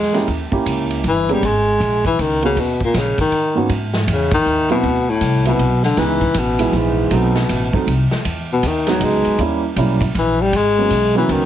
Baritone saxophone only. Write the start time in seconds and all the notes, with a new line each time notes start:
Already playing: G#3
1.08 E3
1.32 G3
1.46 G#3
2.06 E3
2.20 D#3
2.45 C#3
2.60 B2
2.84 A#2
2.98 C#3
3.20 D#3
4.12 C#3
4.34 D#3
4.71 B2
5.09 A2
5.47 B2
5.84 D3
5.99 E3
6.39 B2
6.76 G#2
7.17 B2
8.53 B2
8.67 D#3
8.90 F#3
9.04 G#3
10.19 E3
10.41 G3
10.56 G#3
11.17 E3
11.31 D#3